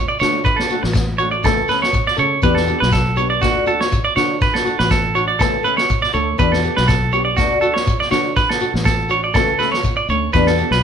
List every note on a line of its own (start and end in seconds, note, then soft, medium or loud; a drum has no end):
0.08 0.20 D5 medium
0.20 0.69 D3 medium
0.20 0.38 D4 soft
0.20 0.37 F#4 medium
0.20 0.44 C#5 medium
0.20 snare medium
0.20 shekere medium
0.24 0.38 A3 soft
0.44 0.58 B4 medium
0.44 kick medium
0.44 shekere medium
0.56 0.81 A4 medium
0.56 snare medium
0.69 0.87 A3 soft
0.69 0.87 D4 soft
0.69 0.86 F#4 medium
0.69 shekere medium
0.83 1.45 A1 medium
0.83 muted clean electric guitar stroke medium
0.83 snare medium
0.93 muted clean electric guitar stroke medium
0.93 kick medium
0.93 snare medium
0.93 shekere medium
1.18 1.36 A3 soft
1.18 1.36 D4 soft
1.18 1.35 F#4 soft
1.18 1.31 C#5 medium
1.18 shekere medium
1.31 1.43 D5 medium
1.44 2.01 C#2 medium
1.44 1.60 E3 medium
1.44 1.60 A3 medium
1.44 1.60 C#4 medium
1.44 1.68 A4 medium
1.44 1.60 A4 medium
1.44 kick medium
1.44 snare medium
1.44 shekere medium
1.68 1.86 A3 soft
1.68 1.85 C#4 medium
1.68 1.85 A4 soft
1.68 1.82 B4 medium
1.68 snare soft
1.68 shekere medium
1.82 2.06 C#5 medium
1.82 snare medium
1.93 kick medium
1.93 shekere medium
2.07 2.18 D5 medium
2.07 snare soft
2.16 2.37 C#3 medium
2.16 2.34 A3 soft
2.16 2.34 C#4 medium
2.16 2.33 A4 medium
2.16 2.42 C#5 medium
2.16 shekere medium
2.42 2.72 E2 medium
2.42 2.58 E3 medium
2.42 2.59 B3 medium
2.42 2.59 D4 medium
2.42 2.59 G4 medium
2.42 2.56 B4 medium
2.42 kick medium
2.42 shekere medium
2.55 2.79 A4 medium
2.55 snare medium
2.66 2.84 B3 soft
2.66 2.83 D4 soft
2.66 2.83 G4 medium
2.66 shekere medium
2.80 3.43 B1 medium
2.80 2.92 B4 medium
2.80 snare medium
2.91 3.16 A4 medium
2.91 kick medium
2.91 snare medium
2.91 shekere medium
3.16 3.34 B3 soft
3.16 3.33 D4 soft
3.16 3.32 G4 soft
3.16 3.30 C#5 medium
3.16 shekere medium
3.30 3.41 D5 medium
3.42 3.99 D2 medium
3.42 3.58 A3 medium
3.42 3.58 D4 medium
3.42 3.65 F#4 medium
3.42 3.58 F#4 medium
3.42 kick medium
3.42 snare medium
3.42 shekere medium
3.67 3.84 D4 soft
3.67 3.82 F#4 medium
3.67 3.80 A4 medium
3.67 shekere medium
3.81 4.04 C#5 medium
3.81 snare medium
3.92 kick medium
3.92 shekere medium
4.05 4.16 D5 medium
4.16 4.64 D3 medium
4.16 4.33 D4 soft
4.16 4.32 F#4 medium
4.16 4.40 C#5 medium
4.16 snare medium
4.16 shekere medium
4.41 4.54 B4 medium
4.41 kick medium
4.41 snare soft
4.41 shekere medium
4.54 4.77 A4 medium
4.54 snare medium
4.64 4.82 D4 soft
4.64 4.80 F#4 medium
4.64 shekere medium
4.79 5.41 A1 medium
4.79 4.90 B4 medium
4.79 snare medium
4.90 5.14 A4 medium
4.90 kick medium
4.90 snare medium
4.90 shekere medium
5.15 5.32 D4 soft
5.15 5.30 F#4 soft
5.15 5.27 C#5 medium
5.15 shekere medium
5.28 5.39 D5 medium
5.39 5.97 C#2 medium
5.39 5.56 E3 medium
5.39 5.56 A3 medium
5.39 5.56 C#4 medium
5.39 5.63 A4 medium
5.39 5.56 A4 medium
5.39 kick medium
5.39 snare medium
5.39 shekere medium
5.63 5.80 A3 soft
5.63 5.80 C#4 soft
5.63 5.79 A4 medium
5.63 5.77 B4 medium
5.63 shekere medium
5.77 6.01 C#5 medium
5.77 snare medium
5.90 kick medium
5.90 shekere medium
6.02 6.13 D5 medium
6.02 snare soft
6.13 6.33 D2 medium
6.13 6.31 A3 soft
6.13 6.29 A4 medium
6.13 6.37 C#5 medium
6.13 muted nylon-string guitar stroke soft
6.13 shekere medium
6.38 6.68 E2 loud
6.38 6.54 E3 medium
6.38 6.54 B3 medium
6.38 6.54 D4 medium
6.38 6.54 G4 medium
6.38 6.51 B4 medium
6.38 kick medium
6.38 shekere medium
6.52 6.75 A4 medium
6.52 snare medium
6.63 6.80 B3 soft
6.63 6.79 G4 soft
6.63 shekere medium
6.77 7.38 B1 medium
6.77 6.87 B4 medium
6.77 snare medium
6.88 7.11 A4 medium
6.88 kick medium
6.88 snare medium
6.88 shekere medium
7.12 7.30 B3 soft
7.12 7.29 D4 soft
7.12 7.29 G4 medium
7.12 7.24 C#5 medium
7.12 shekere medium
7.25 7.36 D5 medium
7.37 7.94 D2 medium
7.37 7.53 A3 medium
7.37 7.54 D4 medium
7.37 7.60 F#4 medium
7.37 7.54 F#4 medium
7.37 kick medium
7.37 snare medium
7.37 shekere medium
7.61 7.78 D4 soft
7.61 7.77 F#4 medium
7.61 7.74 A4 medium
7.61 shekere medium
7.74 7.98 C#5 medium
7.74 snare medium
7.87 kick medium
7.87 shekere medium
8.00 8.11 D5 medium
8.00 snare soft
8.11 8.59 D3 medium
8.11 8.28 D4 soft
8.11 8.27 F#4 medium
8.11 8.35 C#5 medium
8.11 snare medium
8.11 shekere medium
8.36 8.49 B4 medium
8.36 kick medium
8.36 snare soft
8.36 shekere medium
8.49 8.73 A4 medium
8.49 snare medium
8.61 8.77 D4 soft
8.61 8.76 F#4 medium
8.61 shekere medium
8.74 9.35 A1 medium
8.74 snare medium
8.85 9.09 A4 medium
8.85 kick medium
8.85 snare medium
8.85 shekere medium
9.09 9.26 D4 soft
9.09 9.25 F#4 medium
9.09 9.23 C#5 medium
9.09 shekere medium
9.24 9.35 D5 medium
9.34 9.92 C#2 medium
9.34 9.50 E3 medium
9.34 9.51 A3 medium
9.34 9.51 C#4 loud
9.34 9.58 A4 medium
9.34 9.51 A4 medium
9.34 kick medium
9.34 snare medium
9.34 shekere medium
9.59 9.76 A3 soft
9.59 9.76 C#4 soft
9.59 9.75 A4 medium
9.59 9.71 B4 medium
9.59 snare soft
9.59 shekere medium
9.72 9.96 C#5 medium
9.72 snare medium
9.84 kick medium
9.84 shekere medium
9.97 10.08 D5 medium
10.09 10.28 D2 medium
10.09 10.26 A3 soft
10.09 10.25 C#4 medium
10.09 10.33 C#5 medium
10.09 shekere medium
10.33 10.62 E2 loud
10.33 10.49 E3 medium
10.33 10.50 B3 medium
10.33 10.50 D4 medium
10.33 10.50 G4 medium
10.33 10.46 B4 medium
10.33 kick medium
10.33 snare soft
10.33 shekere medium
10.46 10.70 A4 medium
10.46 snare medium
10.58 10.75 B3 soft
10.58 10.74 D4 soft
10.58 10.74 G4 medium
10.58 shekere medium
10.71 10.83 B1 medium
10.71 10.83 B4 medium
10.71 snare medium